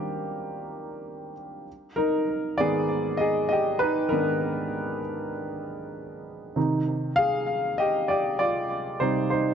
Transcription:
0.00 1.69 D#3 soft
0.00 1.68 G3 soft
0.00 1.69 A#3 medium
0.00 1.68 D4 medium
0.00 1.68 D#4 medium
0.00 1.69 G4 medium
0.00 1.69 A#4 medium
1.96 2.55 D#4 medium
1.96 2.60 A#4 medium
2.58 4.10 G#2 soft
2.58 4.10 D#3 soft
2.58 4.11 B3 medium
2.58 3.17 G#4 medium
2.58 3.21 D5 medium
3.17 3.49 G#4 medium
3.17 3.47 D#5 medium
3.49 3.80 G4 medium
3.49 3.81 D#5 medium
3.79 4.10 D#4 medium
3.79 4.12 B4 medium
4.09 4.99 G#2 soft
4.09 5.00 D#3 soft
4.09 5.00 B3 soft
4.09 6.53 D4 soft
4.09 6.51 A#4 medium
6.56 8.97 C3 soft
6.56 8.98 D#3 soft
6.56 8.98 D#4 soft
7.16 7.76 G#4 medium
7.16 7.74 F5 medium
7.78 8.08 G4 medium
7.78 8.07 D#5 medium
8.08 8.17 G4 medium
8.08 8.15 D5 medium
8.39 8.98 F4 medium
8.39 9.03 D5 medium
9.00 9.54 C3 soft
9.00 9.54 G3 soft
9.00 9.31 D#4 medium
9.00 9.07 C5 medium
9.30 9.54 D#4 medium
9.30 9.54 C5 medium

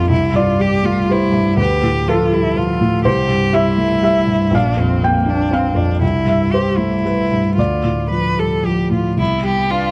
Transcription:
0.00 0.13 A#1 soft
0.00 0.13 F2 soft
0.00 0.13 C4 soft
0.00 0.13 D4 soft
0.00 0.13 A#4 medium
0.00 0.13 C5 medium
0.09 1.54 C2 medium
0.09 0.36 E4 medium
0.34 0.74 G2 soft
0.34 0.63 F4 medium
0.34 1.05 D5 medium
0.59 0.99 G3 soft
0.59 0.87 G4 medium
0.83 1.08 A3 soft
0.83 1.13 F4 medium
1.08 1.49 G3 soft
1.08 1.59 E4 medium
1.08 1.57 C5 medium
1.32 1.58 G2 soft
1.57 3.02 D2 medium
1.57 2.10 G4 medium
1.57 2.06 B4 medium
1.83 2.23 A2 soft
2.06 2.47 F3 soft
2.06 2.35 F4 medium
2.06 2.78 A4 medium
2.31 2.57 G3 soft
2.31 2.59 E4 medium
2.56 2.96 F3 soft
2.56 3.05 F4 medium
2.81 3.06 A2 soft
3.05 4.49 C2 medium
3.05 3.56 G4 medium
3.05 3.51 C5 medium
3.28 3.69 G2 soft
3.53 3.94 G3 soft
3.53 4.56 E4 medium
3.53 4.00 E5 medium
3.77 4.04 A3 soft
4.02 4.43 G3 soft
4.02 4.50 E5 medium
4.27 4.53 G2 soft
4.51 5.96 A#1 medium
4.55 4.81 D4 medium
4.55 5.00 F5 medium
4.77 5.17 F2 soft
4.77 5.06 C4 soft
5.03 5.31 A#3 soft
5.03 5.42 C4 soft
5.03 5.49 G5 medium
5.25 5.51 D4 soft
5.25 5.55 D4 soft
5.51 5.91 C4 soft
5.51 5.78 C4 soft
5.51 5.99 F5 medium
5.75 6.01 F2 soft
5.75 6.02 D4 soft
6.01 7.53 C2 soft
6.01 6.54 E4 soft
6.25 6.67 G2 soft
6.25 6.51 E5 medium
6.52 6.94 G3 soft
6.52 6.78 G4 soft
6.52 7.01 C5 medium
6.77 7.04 A3 soft
6.77 7.55 E4 soft
7.04 7.47 G3 soft
7.04 7.55 B4 soft
7.32 7.58 G2 soft
7.56 9.16 D2 soft
7.56 8.05 F4 soft
7.56 8.89 D5 medium
7.84 8.28 A2 soft
8.10 8.54 F3 soft
8.10 8.41 B4 soft
8.37 8.65 G3 soft
8.37 8.67 A4 soft
8.64 9.08 F3 soft
8.64 8.92 G4 soft
8.90 9.18 A2 soft
8.90 9.19 F4 soft
9.16 9.91 C2 soft
9.16 9.43 E4 soft
9.21 9.73 B3 soft
9.43 9.85 G3 soft
9.43 9.72 G4 soft
9.69 9.91 D4 soft
9.69 9.91 F4 soft
9.69 9.91 B4 soft

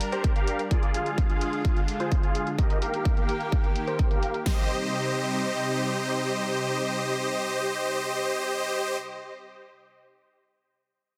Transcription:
0.00 0.67 G3 medium
0.00 0.69 D4 medium
0.00 0.69 A#4 medium
0.00 closed hi-hat medium
0.12 0.33 G4 medium
0.12 0.33 A#4 medium
0.12 0.33 C5 medium
0.12 closed hi-hat soft
0.24 kick loud
0.24 closed hi-hat medium
0.36 0.61 G4 medium
0.36 0.61 A#4 medium
0.36 0.61 F5 loud
0.36 closed hi-hat soft
0.48 closed hi-hat medium
0.59 closed hi-hat soft
0.71 2.57 D3 medium
0.71 2.57 G#3 medium
0.71 2.57 F4 medium
0.71 0.91 F4 medium
0.71 0.91 G#4 medium
0.71 0.91 D5 loud
0.71 kick medium
0.71 closed hi-hat medium
0.83 closed hi-hat soft
0.94 1.27 F4 medium
0.94 1.27 G#4 medium
0.94 1.27 F5 medium
0.94 closed hi-hat medium
1.06 closed hi-hat soft
1.18 kick loud
1.18 closed hi-hat medium
1.30 1.62 F4 medium
1.30 1.62 G#4 medium
1.30 1.62 F5 medium
1.30 closed hi-hat soft
1.41 closed hi-hat medium
1.53 closed hi-hat soft
1.65 1.80 F4 medium
1.65 1.80 G#4 medium
1.65 1.80 F5 medium
1.65 kick loud
1.65 closed hi-hat medium
1.77 closed hi-hat soft
1.88 closed hi-hat medium
2.00 2.21 F4 medium
2.00 2.21 G#4 medium
2.00 2.21 C5 medium
2.00 closed hi-hat soft
2.12 kick loud
2.12 closed hi-hat medium
2.23 2.48 F4 medium
2.23 2.48 G#4 medium
2.23 2.48 F5 medium
2.23 closed hi-hat soft
2.35 closed hi-hat medium
2.47 closed hi-hat soft
2.59 4.44 D#3 medium
2.59 4.44 A#3 medium
2.59 2.79 G4 medium
2.59 4.44 G4 medium
2.59 2.78 A#4 medium
2.59 2.78 D#5 loud
2.59 kick loud
2.59 closed hi-hat medium
2.70 closed hi-hat soft
2.82 3.14 G4 medium
2.82 3.14 A#4 medium
2.82 3.14 F5 medium
2.82 closed hi-hat medium
2.94 closed hi-hat soft
3.05 kick loud
3.05 closed hi-hat medium
3.17 3.49 G4 medium
3.17 3.49 A#4 medium
3.17 3.49 F5 medium
3.17 closed hi-hat soft
3.29 closed hi-hat medium
3.41 closed hi-hat soft
3.52 3.68 G4 medium
3.52 3.68 F5 medium
3.52 kick loud
3.52 closed hi-hat medium
3.64 closed hi-hat soft
3.76 closed hi-hat medium
3.87 4.08 G4 medium
3.87 4.08 A#4 medium
3.87 4.08 C5 medium
3.87 closed hi-hat soft
3.99 kick loud
3.99 closed hi-hat medium
4.11 4.36 G4 medium
4.11 4.36 A#4 medium
4.11 4.36 F5 medium
4.11 closed hi-hat soft
4.23 closed hi-hat medium
4.34 closed hi-hat soft
4.46 8.97 C3 medium
4.46 8.97 G3 medium
4.46 8.97 D#4 medium
4.46 8.97 G4 medium
4.46 8.97 C5 medium
4.46 8.97 D#5 medium
4.46 kick medium
4.46 snare medium
4.46 open hi-hat medium

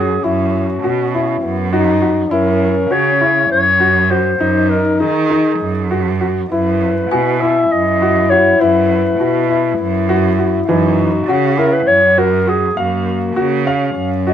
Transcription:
0.00 0.13 F#2 medium
0.00 1.45 C#4 medium
0.00 0.14 F#4 medium
0.00 0.25 G#4 medium
0.23 0.76 F#2 medium
0.23 0.64 E4 medium
0.23 2.02 F#4 medium
0.83 1.36 B2 medium
0.83 1.04 F#4 medium
1.14 1.54 E4 medium
1.42 2.21 F#2 medium
1.42 1.72 B3 medium
1.73 2.33 D#4 loud
1.73 1.92 F#4 medium
2.02 2.22 F#4 medium
2.31 2.84 F#2 medium
2.31 4.13 C#4 medium
2.31 2.71 E4 medium
2.31 2.94 A#4 medium
2.91 3.43 C#3 medium
2.91 3.11 F#4 medium
2.91 3.51 C#5 loud
3.21 3.61 E4 medium
3.50 4.29 F#2 medium
3.50 4.12 C#5 medium
3.80 4.00 F#4 medium
4.11 4.30 F#4 medium
4.11 4.71 C5 medium
4.39 4.92 F#2 medium
4.39 6.16 D#4 loud
4.39 4.81 D#4 medium
4.70 5.00 A#4 medium
5.00 5.53 D#3 medium
5.00 5.20 D#4 medium
5.00 6.17 G#4 medium
5.30 5.71 D#4 medium
5.60 6.40 F#2 medium
5.91 6.11 F#4 medium
6.21 6.41 F#4 medium
6.50 7.04 F#2 medium
6.50 10.70 E4 loud
6.50 6.92 E4 medium
6.50 7.43 B4 medium
7.11 7.64 B2 medium
7.11 7.32 F#4 medium
7.11 9.46 G#5 medium
7.41 7.82 E4 medium
7.41 7.73 E5 medium
7.71 8.50 F#2 medium
7.71 8.31 D#5 medium
8.02 8.22 F#4 medium
8.30 8.52 F#4 medium
8.30 8.62 C#5 medium
8.30 10.65 F#5 soft
8.60 9.13 F#2 medium
8.60 9.01 E4 medium
8.60 10.39 B4 medium
9.20 9.72 B2 medium
9.20 9.40 F#4 medium
9.50 9.90 E4 medium
9.79 10.57 F#2 loud
10.09 10.29 F#4 medium
10.39 10.59 F#4 medium
10.68 11.20 F#2 medium
10.68 11.08 E3 medium
10.68 11.30 D#4 medium
10.68 11.59 F#4 medium
11.27 11.80 C#3 medium
11.27 12.50 C#4 medium
11.27 11.48 F#4 medium
11.27 13.04 F#5 medium
11.58 11.98 E4 medium
11.58 11.75 A#4 medium
11.73 11.89 B4 medium
11.87 12.66 F#2 medium
11.87 12.20 C#5 medium
12.18 12.37 F#4 medium
12.18 12.50 A#4 medium
12.47 12.67 F#4 medium
12.47 12.78 G#4 medium
12.76 13.29 F#2 medium
12.76 13.68 A#3 medium
12.76 14.24 F#4 medium
12.76 13.17 F5 medium
13.36 13.89 C#3 medium
13.36 13.57 F#4 medium
13.67 14.34 C#4 medium
13.67 14.08 F5 medium
13.96 14.34 F#2 medium
14.27 14.34 F#4 medium
14.27 14.34 D#5 medium

